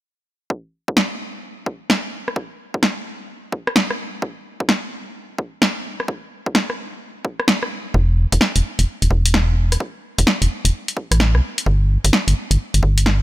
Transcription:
0.50 kick
0.88 kick
0.97 snare
1.66 kick
1.90 snare
2.28 cross-stick
2.36 kick
2.74 kick
2.83 snare
3.52 kick
3.67 cross-stick
3.76 snare
3.91 cross-stick
4.22 kick
4.60 kick
4.69 snare
5.38 kick
5.62 snare
6.00 cross-stick
6.08 kick
6.46 kick
6.55 snare
6.70 cross-stick
7.25 kick
7.40 cross-stick
7.48 snare
7.63 cross-stick
7.94 E1, kick
8.32 E1, kick, closed hi-hat
8.41 snare
8.56 E1, closed hi-hat
8.79 E1, closed hi-hat
9.02 E1, closed hi-hat
9.11 E1, kick
9.26 closed hi-hat
9.34 snare
9.72 cross-stick, closed hi-hat
9.80 kick
10.18 E1, kick, closed hi-hat
10.27 snare
10.42 E1, closed hi-hat
10.65 E1, closed hi-hat
10.88 closed hi-hat
10.97 kick
11.11 A1, cross-stick, closed hi-hat
11.20 snare
11.35 B1, cross-stick
11.58 closed hi-hat
11.66 G1, kick
12.04 G1, kick, closed hi-hat
12.13 snare
12.28 G1, closed hi-hat
12.51 G1, closed hi-hat
12.74 G1, closed hi-hat
12.83 G1, kick
12.98 closed hi-hat
13.06 snare

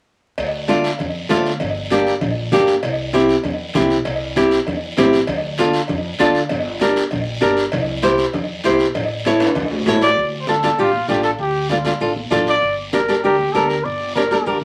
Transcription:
0.38 D2, cowbell, high conga, long guiro
0.68 A3 D4 F4, cowbell, high conga, short guiro
0.84 short guiro
0.99 F2, cowbell, high conga, low conga, long guiro
1.29 D2 A3 D4 F4, cowbell, high conga, low timbale, short guiro
1.46 short guiro
1.60 G1, cowbell, high conga, low conga, long guiro
1.90 A#3 D4 G4, cowbell, high conga, short guiro
2.07 short guiro
2.21 A#1, cowbell, high conga, low conga, long guiro
2.52 G1 A#3 D4 G4, cowbell, high conga, low conga, short guiro
2.67 short guiro
2.83 C2, cowbell, high conga, long guiro
3.13 C4 E4 G4, cowbell, high conga, short guiro
3.29 short guiro
3.44 E2, cowbell, high conga, low conga, long guiro
3.74 C2 C4 E4 G4, cowbell, high conga, low conga, short guiro
3.90 short guiro
4.05 C2, cowbell, high conga, long guiro
4.36 C4 E4 G4, cowbell, high conga, short guiro
4.51 short guiro
4.67 E2, cowbell, high conga, low conga, long guiro
4.97 A1 C4 E4 G4, cowbell, high conga, low conga, low timbale, short guiro
5.13 short guiro
5.27 D2, cowbell, high conga, low conga
5.58 D4 F4 A4, cowbell, high conga, short guiro
5.73 short guiro
5.88 F2, cowbell, high conga, low conga, long guiro
6.19 D2 D4 F4 A4, cowbell, high conga, short guiro
6.35 short guiro
6.49 G1, cowbell, high conga, low conga, long guiro
6.80 D4 G4 A#4, cowbell, high conga, short guiro
6.96 short guiro
7.11 A#1, cowbell, high conga, low conga, long guiro
7.41 G1 D4 G4 A#4, cowbell, high conga, short guiro
7.57 short guiro
7.72 C2, cowbell, high conga, low conga, long guiro
8.02 E4 G4 C5, cowbell, high conga, short guiro
8.18 short guiro
8.33 E2, cowbell, high conga, low conga, long guiro
8.64 C2 E4 G4 C5, cowbell, high conga, short guiro
8.79 short guiro
8.94 A1, cowbell, high conga, low conga, long guiro
9.25 E4 A4 C#5, cowbell, high conga, short guiro
9.40 high timbale, short guiro
9.55 C#2, cowbell, high conga, low conga, high timbale, long guiro
9.71 low timbale
9.86 A1 E4 A4 C#5, cowbell, high conga, low timbale, short guiro
10.01 D5, low timbale, short guiro
10.17 D2, long guiro
10.33 high conga
10.40 C5
10.47 D4 F4 A4, high conga, short guiro
10.63 D4 F4 A4, high conga, short guiro
10.78 A1 D4 F4 G4, high conga
10.93 high conga
11.08 A1 D4 F4 G4 A4, high conga, short guiro
11.23 A4, short guiro
11.39 D2 G4, long guiro
11.54 high conga
11.69 D4 F4 A4, high conga, short guiro
11.85 D4 F4 A4, high conga, short guiro
12.00 A1 D4 F4 A4, high conga, long guiro
12.16 high conga
12.31 A1 D4 F4 A4, high conga, low conga, short guiro
12.47 D5, short guiro
12.62 G1, long guiro
12.78 high conga
12.93 D4 G4 A#4, high conga, short guiro
13.08 D4 G4 A4, short guiro
13.23 D2 D4 G4 A#4, high conga, long guiro
13.39 high conga
13.53 D2 D4 G4 A4 A#4, high conga, short guiro
13.69 A#4, short guiro
13.84 G1 D5, long guiro
14.01 high conga
14.15 D4 G4 A#4 C#5, high conga, short guiro
14.31 D4 G4 A#4, high conga, short guiro
14.46 D2 D4 G4 A#4, high conga, long guiro

